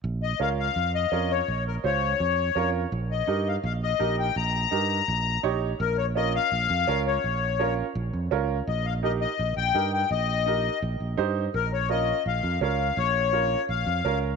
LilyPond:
<<
  \new Staff \with { instrumentName = "Accordion" } { \time 4/4 \key bes \dorian \tempo 4 = 167 r8 ees''8 f''8 f''4 ees''4 des''8~ | des''8 bes'8 des''2~ des''8 r8 | r8 ees''4 f''8 f''8 ees''4 g''8 | bes''2. r4 |
bes'8 des''8 ees''8 f''2 des''8~ | des''4. r2 r8 | ees''8 f''8 ees''8 ees''4 g''4 g''8 | ees''2 r2 |
bes'8 des''8 ees''4 f''4 f''4 | des''2 f''4. r8 | }
  \new Staff \with { instrumentName = "Upright piano" } { \time 4/4 \key bes \dorian r4 <des' f' bes'>8 r4. <des' f' bes'>8 r8 | r4 <des' f' c''>8 r4. <des' f' bes'>8 r8 | r4 <ees' g' bes'>8 r4. <ees' g' bes'>8 r8 | r4 <ees' g' bes'>8 r4. <ees' g' des''>8 r8 |
r4 <des' f' bes'>8 r4. <des' f' bes'>8 r8 | r4 <des' f' bes'>8 r4. <des' f' bes'>8 r8 | r4 <ees' g' bes'>8 r4. <ees' g' bes'>8 r8 | r4 <ees' g' bes'>8 r4. <ees' g' c''>8 r8 |
r4 <des' f' bes'>8 r4. <des' f' bes'>8 r8 | r4 <des' f' bes'>8 r4. <des' f' bes'>8 r8 | }
  \new Staff \with { instrumentName = "Fingered electric bass" } { \clef bass \time 4/4 \key bes \dorian bes,,4 des,4 f,4 f,4 | bes,,4 des,4 f,4 f,4 | bes,,4 g,4 bes,,4 bes,,4 | bes,,4 g,4 bes,,4 bes,,4 |
bes,,2 bes,,8 f,8 des,4 | bes,,2 bes,,8 f,8 des,4 | bes,,2 bes,,8 bes,,8 g,4 | bes,,2 bes,,8 bes,,8 g,4 |
bes,,2 bes,,8 f,8 des,4 | bes,,2 bes,,8 f,8 des,4 | }
>>